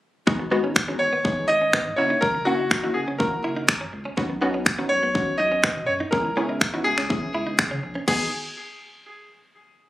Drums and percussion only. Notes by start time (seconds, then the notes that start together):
0.27 kick
0.76 finger snap, kick
1.25 kick
1.73 finger snap, kick
2.22 kick
2.71 finger snap, kick
3.20 kick
3.69 finger snap, kick
4.17 kick
4.66 finger snap, kick
5.15 kick
5.64 finger snap, kick
6.13 kick
6.61 finger snap, kick
6.98 finger snap
7.10 kick
7.59 finger snap, kick
8.08 kick, crash